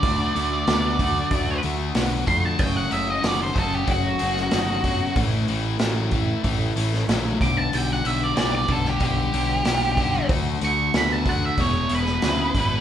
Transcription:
<<
  \new Staff \with { instrumentName = "Lead electric guitar" } { \time 4/4 \key d \major \tempo 4 = 94 d''2~ d''8 r4 c'''16 a''16 | g''16 fis''16 e''16 dis''16 d''16 c''16 a'16 g'16 fis'2 | r2. r8 d'''16 a''16 | g''16 fis''16 e''16 d''16 d''16 d''16 a'16 g'16 g'2 |
r8 cis'''8 b''16 a''16 fis''16 e''16 cis''8 b'4. | }
  \new Staff \with { instrumentName = "Twelve-string acoustic guitar" } { \time 4/4 \key d \major <d fis a d' fis'>8 <fis a d' fis'>16 <a d' fis'>16 <d fis a d' fis'>16 <a d' fis'>16 <fis a d' fis'>8. <a d' fis'>16 <fis a d' fis'>16 <a d' fis'>16 <d fis a d' fis'>8 <fis a d' fis'>16 <a d' fis'>16 | <fis, cis fis a cis' fis'>8 <fis a cis' fis'>16 <fis a cis' fis'>16 <fis, cis fis a cis' fis'>16 <fis a cis' fis'>16 <fis a cis' fis'>8. <fis a cis' fis'>16 <fis a cis' fis'>16 <fis a cis' fis'>16 <fis, cis fis a cis' fis'>8 <fis a cis' fis'>16 <fis a cis' fis'>16 | <a, e a cis' e' a'>8 <a cis' a'>16 <a cis' e' a'>16 <a, e a cis' e' a'>16 <a cis' e' a'>16 <a cis' e' a'>8. <a cis' e' a'>16 <a cis' e' a'>16 <a cis' e' a'>16 <a, e a cis' e' a'>8 <g b d' g'>8 | <b, g b d' g'>8 <g b d' g'>16 <b d' g'>16 <b, g b d' g'>16 <b d' g'>16 <g b d' g'>8. <b d' g'>16 <g b d' g'>16 <b d' g'>16 <b, g b d' g'>8 <g b d' g'>8 |
<d fis a d' fis'>8 <fis a d' fis'>16 <a d' fis'>16 <d fis a d' fis'>16 <a d' fis'>16 <fis a d' fis'>8 <e b e' gis'>16 <b e' gis'>16 <e b e' gis'>16 <b e' gis'>16 <e b e' gis'>8 <e b e' gis'>8 | }
  \new Staff \with { instrumentName = "Overdriven electric guitar" } { \clef bass \time 4/4 \key d \major <d a>8 <d a>8 <d b>8 <d a>8 <d a>8 <d a>8 <d b>8 <d a>8 | <fis, cis>8 <fis, cis>8 <fis, dis>8 <fis, cis>8 <fis, cis>8 <fis, cis>8 <fis, dis>8 <fis, cis>8 | <a, e>8 <a, e>8 <a, fis>8 <a, e>8 <a, e>8 <a, e>8 <a, fis>8 <g, d>8 | <g, d>8 <g, d>8 <g, e>8 <g, d>8 <g, d>8 <g, d>8 <g, e>8 <g, d>8 |
<d a>8 <d a>8 <d b>8 <d a>8 <e, b,>8 <e, b,>8 <e, cis>8 <e, b,>8 | }
  \new Staff \with { instrumentName = "Picked electric bass" } { \clef bass \time 4/4 \key d \major d,8 d,8 d,4 d,8 d,8 b,,8 f,8 | fis,,8 fis,,8 fis,,8 fis,,8 fis,,8 fis,,8 g,,4 | a,,8 a,,8 a,,4 a,,8 a,,8 bes,,8 b,,8 | b,,8 b,,8 b,,8 b,,8 b,,8 b,,8 b,,4 |
d,8 d,8 d,4 e,,8 e,,8 d,8 gis,,8 | }
  \new DrumStaff \with { instrumentName = "Drums" } \drummode { \time 4/4 <hho bd>8 hho8 <hho sn>8 <hho bd>8 <hho bd>8 hho8 <hho sn>8 <hho bd>8 | <hho bd>8 hho8 <hho sn>8 <hho bd>8 <hho bd>8 hho16 sn16 <hho sn>8 <hho bd>8 | <hho bd>8 hho8 <hho sn>8 <hho bd>8 <hho bd>8 hho16 sn16 <hho sn>8 <hho bd>8 | hho8 hho8 <hho sn>8 <hho bd>16 sn16 <hho bd>8 hho8 <hho sn>8 <hho bd>8 |
<hho bd>8 hho8 <hho sn>8 <hho bd>8 <hho bd>8 hho16 sn16 <hho sn>8 <hho bd>8 | }
>>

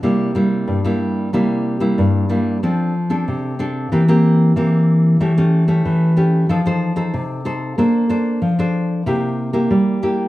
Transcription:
\new Staff \with { instrumentName = "Nylon-string guitar" } { \time 4/4 \key c \mixolydian \tempo 4 = 93 << { <g bes e'>8 <g bes e'>8. <g bes e'>8. <g bes e'>8. <g bes e'>8. <g bes e'>8 | <c' d' a'>8 r16 <c' d' a'>8. <c' d' a'>8 <bes c' g'>16 <bes c' g'>8. <bes c' g'>4 | <a cis' g'>16 <a cis' g'>8 <a cis' g'>8. <a cis' g'>8 <ees' a' c''>16 <ees' a' c''>8 <ees' a' c''>8. <ees' a' c''>8 | <d' a' c''>8 <d' a' c''>8. <d' a' c''>8. <bes e' g'>8. <bes e' g'>8. <bes e' g'>8 | } \\ { c4 g,4 c4 g,4 | f4 c4 e4 e4 | e4 e4 f4 c4 | bes4 f4 c4 g4 | } >> }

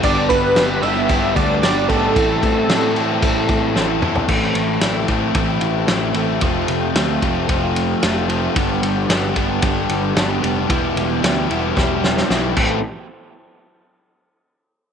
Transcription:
<<
  \new Staff \with { instrumentName = "Synth bell" } { \time 4/4 \key a \minor \tempo 4 = 112 d'''8 b''4 e'''4 d'''8 d'''8 a''8~ | a''2.~ a''8 r8 | r1 | r1 |
r1 | r1 | r1 | }
  \new Staff \with { instrumentName = "Analog synth lead" } { \time 4/4 \key a \minor d''8 b'4 e''4 d''8 d''8 a'8~ | a'2.~ a'8 r8 | r1 | r1 |
r1 | r1 | r1 | }
  \new Staff \with { instrumentName = "Overdriven electric guitar" } { \time 4/4 \key a \minor <b d' g'>4 <b d' g'>8 <b d' g'>8 <b d' g'>4 <b d' g'>8 <b d' g'>8 | <e c' e'>4 <e c' e'>8 <e c' e'>8 <e c' e'>4 <e c' e'>8 <e c' e'>8 | <e a c'>4 <e a c'>8 <e a c'>8 <e a c'>4 <e a c'>8 <e a c'>8 | <f a c'>4 <f a c'>8 <f a c'>8 <f a c'>4 <f a c'>8 <f a c'>8 |
<g b d'>4 <g b d'>8 <g b d'>8 <g b d'>4 <g b d'>8 <g b d'>8 | <g b e'>4 <g b e'>8 <g b e'>8 <g b e'>4 <g b e'>8 <e a c'>8 | r1 | }
  \new Staff \with { instrumentName = "Overdriven electric guitar" } { \time 4/4 \key a \minor <g, d g b d' g'>4 <g, d g b d' g'>8 <g, d g b d' g'>8 <g, d g b d' g'>4 <g, d g b d' g'>8 <g, d g b d' g'>8 | <a, e c' e' a'>4 <a, e c' e' a'>8 <a, e c' e' a'>8 <a, e c' e' a'>4 <a, e c' e' a'>8 <a, e c' e' a'>8 | <a, e a c' e'>4 <a, e a c' e'>8 <a, e a c' e'>8 <a, e a c' e'>4 <a, e a c' e'>8 <a, e a c' e'>8 | <f, c f a c' f'>4 <f, c f a c' f'>8 <f, c f a c' f'>8 <f, c f a c' f'>4 <f, c f a c' f'>8 <f, c f a c' f'>8 |
<g, d g b d' g'>4 <g, d g b d' g'>8 <g, d g b d' g'>8 <g, d g b d' g'>4 <g, d g b d' g'>8 <g, d g b d' g'>8 | <e, b, e g e' g'>4 <e, b, e g e' g'>8 <e, b, e g e' g'>8 <e, b, e g e' g'>4 <e, b, e g e' g'>8 <a, e a c' e'>8 | r1 | }
  \new Staff \with { instrumentName = "Picked electric bass" } { \clef bass \time 4/4 \key a \minor g,,8 g,,8 g,,8 g,,8 g,,8 d,8 g,,8 gis,,8 | a,,8 a,,8 a,4 a,,8 a,8 a,,8 e,8 | a,,8 a,,8 a,,8 a,,8 a,,8 a,,8 a,,8 a,,8 | f,,8 f,,8 d,8 f,,8 f,,4 f,,4 |
g,,8 g,,8 g,,8 g,,8 g,,8 g,,8 g,,8 f,,8 | e,,8 e,,8 d,8 e,,8 e,,4 b,,8 a,,8 | r1 | }
  \new DrumStaff \with { instrumentName = "Drums" } \drummode { \time 4/4 <cymc bd>8 <cymc bd>8 <cymc sn>8 cymc8 <cymc bd>8 <cymc bd>8 <cymc sn>8 <cymc bd>8 | <cymc bd>8 <cymc bd>8 <cymc sn>8 cymc8 <cymc bd>8 <cymc bd>8 sn8 toml16 tomfh16 | <cymc bd>8 cymr8 <cymr sn>8 <bd cymr>8 <bd cymr>8 cymr8 <cymr sn>8 cymr8 | <bd cymr>8 cymr8 <cymr sn>8 <bd cymr>8 <bd cymr>8 cymr8 <cymr sn>8 cymr8 |
<bd cymr>8 cymr8 <cymr sn>8 <bd cymr>8 <bd cymr>8 cymr8 <cymr sn>8 cymr8 | <bd cymr>8 cymr8 <cymr sn>8 cymr8 <bd sn>8 sn16 sn16 sn8 <cymc bd>8 | r4 r4 r4 r4 | }
>>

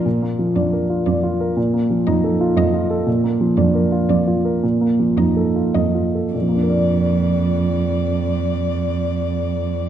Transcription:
<<
  \new Staff \with { instrumentName = "Violin" } { \time 3/4 \key bes \major \tempo 4 = 111 r4 d''4 d''4 | r4 ees''4 ees''4 | r4 d''4 d''4 | r4 ees''4 ees''4 |
d''2.~ | d''2. | }
  \new Staff \with { instrumentName = "Grand piano" } { \time 3/4 \key bes \major \tuplet 3/2 { bes,8 bes8 f8 d'8 bes'8 f'8 d''8 f'8 bes'8 } | \tuplet 3/2 { bes,8 bes8 f8 ees'8 a'8 f'8 ees''8 f'8 a'8 } | \tuplet 3/2 { bes,8 bes8 f8 d'8 bes'8 f'8 d''8 f'8 bes'8 } | \tuplet 3/2 { bes,8 bes8 f8 ees'8 a'8 f'8 ees''8 f'8 a'8 } |
<bes, f bes d' bes' d''>2.~ | <bes, f bes d' bes' d''>2. | }
  \new Staff \with { instrumentName = "Cello" } { \clef bass \time 3/4 \key bes \major r4 f,4 f,4 | r4 f,4 f,4 | r4 f,4 f,4 | r4 f,4 f,4 |
f,2.~ | f,2. | }
>>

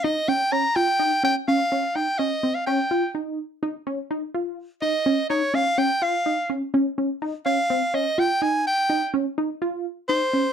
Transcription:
<<
  \new Staff \with { instrumentName = "Soprano saxophone" } { \time 11/8 \key ees \mixolydian \tempo 4 = 125 ees''8 g''8 bes''8 g''4 g''8 f''4 g''8 ees''8. f''16 | g''4 r2. r8 ees''4 | des''8 f''8 g''8 f''4 r2 f''4 | ees''8 g''8 aes''8 g''4 r2 c''4 | }
  \new Staff \with { instrumentName = "Synth arpeggio sound" } { \time 11/8 \key ees \mixolydian ees'8 des'8 des'8 f'8 ees'8 des'8 des'8 des'8 ees'8 des'8 c'8 | des'8 f'8 ees'4 ees'8 des'8 ees'8 f'4 ees'8 des'8 | ees'8 des'8 des'8 f'8 ees'8 des'8 des'8 des'8 ees'8 des'8 c'8 | des'8 f'8 ees'4 ees'8 des'8 ees'8 f'4 ees'8 des'8 | }
>>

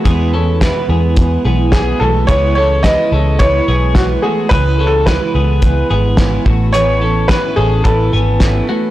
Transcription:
<<
  \new Staff \with { instrumentName = "Upright piano" } { \time 4/4 \key cis \minor \tempo 4 = 108 r2. gis'8 a'8 | cis''8 cis''8 dis''4 cis''4 fis'8 gis'8 | \tuplet 3/2 { b'4 a'8 } b'2 r4 | cis''4 b'8 gis'8 a'4. r8 | }
  \new Staff \with { instrumentName = "Clean electric guitar" } { \time 4/4 \key cis \minor <b gis'>8 <cis' a'>8 <e' b'>8 <b gis'>4 <b gis'>4 <a fis'>8 | <b gis'>8 <cis' a'>8 <e' b'>8 <cis' a'>8 <e' b'>8 <b gis'>4 <a fis'>8 | <b gis'>8 <cis' a'>8 <e' b'>8 <b gis'>4 <b gis'>4 <a fis'>8 | <b gis'>8 <cis' a'>8 <e' b'>8 <cis' a'>8 <e' b'>8 <b gis''>4 <a fis'>8 | }
  \new Staff \with { instrumentName = "Twelve-string acoustic guitar" } { \time 4/4 \key cis \minor <e, b, e gis b e'>8 <e gis b e'>8 <e, b, e gis b e'>8 <e gis b e'>8 <e gis b e'>8 <e gis b e'>8 <e, b, e gis b e'>8 <e gis b e'>8 | <cis e gis b e'>8 <gis b e'>8 <cis e gis b e'>8 <gis b e'>8 <e gis b e'>8 <gis b e'>8 <cis e gis b e'>8 <gis b e'>8 | <cis e gis b e'>8 <gis b e'>8 <cis e gis b e'>8 <gis b e'>8 <e gis b e'>8 <gis b e'>8 <cis e gis b e'>8 <b cis' e'>8 | <a, e b cis' e'>8 <b cis' e'>8 <a, e b cis' e'>8 <b cis' e'>8 <e b cis' e'>8 <b cis' e'>8 <a, e b cis' e'>8 <b cis' e'>8 | }
  \new Staff \with { instrumentName = "Picked electric bass" } { \clef bass \time 4/4 \key cis \minor e,4~ e,16 r16 e,4 b,,4 b,,8 | cis,4~ cis,16 r16 cis,4 b,,4 r8 | cis,4~ cis,16 r16 cis,4 gis,,4 a,,8~ | a,,4~ a,,16 r16 a,,8 a,,8 gis,,4 r8 | }
  \new DrumStaff \with { instrumentName = "Drums" } \drummode { \time 4/4 <hh bd>4 <hh bd sn>4 <hh bd>4 <hh bd sn>4 | <hh bd>4 <hh bd sn>4 <hh bd>4 <hh bd sn>4 | <hh bd>4 <hh bd sn>4 <hh bd>4 <hh bd sn>8 bd8 | hh4 <hh bd sn>4 <hh bd>4 <hh bd sn>4 | }
>>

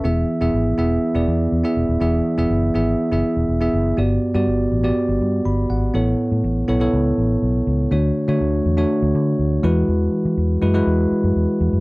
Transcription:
<<
  \new Staff \with { instrumentName = "Tine electric piano" } { \time 4/4 \key e \mixolydian \tempo 4 = 122 << { r1 | r1 | r2. b''8 fis''8~ | fis''8 r2. r8 |
r1 | r1 | } \\ { <b e' gis' e''>8 r16 <b e' gis' e''>8 r16 <b e' gis' e''>8 r16 <b e' gis' d''>8 r8 <b e' gis' e''>8 r16 | <b e' gis' e''>8 r16 <b e' gis' e''>8 r16 <b e' gis' e''>8 r16 <b e' gis' e''>8 r8 <b e' gis' e''>8 r16 | <b fis' g' d''>8 r16 <b fis' g' d''>8 r8 <b fis' g' d''>4~ <b fis' g' d''>16 r4 | <b e' a' cis''>4 r8 <b e' a' cis''>16 <b e' a' cis''>4~ <b e' a' cis''>16 r4 |
<a d' fis' cis''>8 r16 <a d' fis' cis''>8 r8 <a d' fis' cis''>4~ <a d' fis' cis''>16 r8 <gis e' fis' b'>8~ | <gis e' fis' b'>4 r8 <gis e' fis' b'>16 <gis e' fis' b'>4~ <gis e' fis' b'>16 r4 | } >> }
  \new Staff \with { instrumentName = "Tine electric piano" } { \clef bass \time 4/4 \key e \mixolydian e4. r2 r8 | e4. r2 r8 | g,4. r2 r8 | a,4. r2 r8 |
d4. r2 e8~ | e4 r2. | }
  \new Staff \with { instrumentName = "Fingered electric bass" } { \clef bass \time 4/4 \key e \mixolydian e,,8 r16 e,,16 gis,,8 e,,8 r16 e,,16 e,8 e,16 r16 e,,16 dis,,16 | e,,8 r16 e,,16 fis,,8 gis,,8 r16 fis,,16 r16 e,,16 e,,8 fis,,8 | g,,8 r16 g,16 g,,8 a,,8 r16 g,,16 g,8 g,,8 gis,,8 | a,,8 r16 a,16 a,,8 b,,8 cis,8 a,,8 b,,8 cis,8 |
d,8 r16 d16 d,8 e,8 r16 d,16 d8 d,8 e,8 | e,8 r16 e16 e,8 fis,8 e,8 r16 fis,16 e,16 r16 e,16 fis,16 | }
>>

